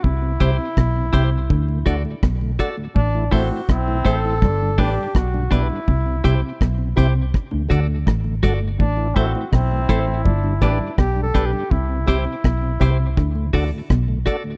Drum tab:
HH |-x-x-x-x|-opx-opx|-x-x-x-x|-x-x-x-x|
SD |--r---r-|--r-r-r-|--r-r-r-|--r---r-|
BD |oooooooo|oooooooo|oooooooo|oooooooo|

HH |-x-x-opx|
SD |--r-r-r-|
BD |oooooooo|